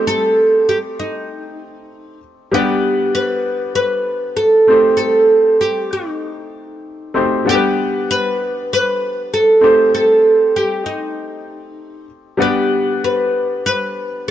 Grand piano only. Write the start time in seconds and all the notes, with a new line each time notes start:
Already playing: A3 C4 D#4 G4 C5
2.52 G3 B3 D4 B4 F#5
4.67 A3 C4 D#4 G4 C5
7.14 A3 C4 D#4 G4 C5
7.45 G3 B3 D4 A4 F#5
7.55 B4
9.61 A3 C4 D#4 G4 C5
12.37 G3 B3 D4 B4 F#5